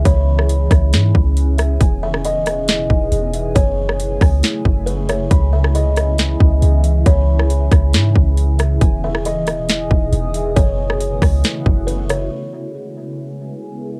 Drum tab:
HH |x---x-x-x---x-x-|x---x-x-x---x-x-|x---x-o-x---x-x-|x---x-x-x---x-x-|
SD |---r--r-o-----r-|---r--r-o-------|---r--r-o-----r-|---r--r-o-------|
BD |o-----o---o-----|o---------o-----|o-----o---o-----|o---------o-----|

HH |x---x-x-x---x-x-|x---x-x-x---x-x-|x---x-o-x---x-x-|----------------|
SD |---r--r-o-----r-|---r--r-o-------|---r--r-o-----r-|----------------|
BD |o-----o---o-----|o---------o-----|o-----o---o-----|----------------|